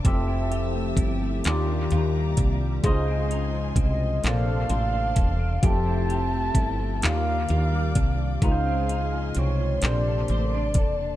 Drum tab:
HH |xxxxxx|xxxxxx|xxxxxx|xxxxxx|
CP |---x--|---x--|---x--|---x--|
BD |o-o--o|o-o--o|o-o--o|o----o|